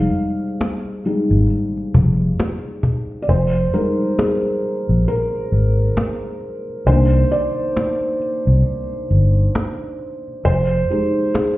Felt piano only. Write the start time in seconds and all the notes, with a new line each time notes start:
Already playing: G3 G#3 D#4 F5
1.06 G3 G#3 D#4
3.22 D5
3.29 C5
3.74 G3 G#3 D#4 A#4
4.18 G#4
5.08 A#4
6.87 D#3 A#3 D4 C5
7.31 D5
10.45 C5
10.90 G#3 D#4 G4
11.34 G#4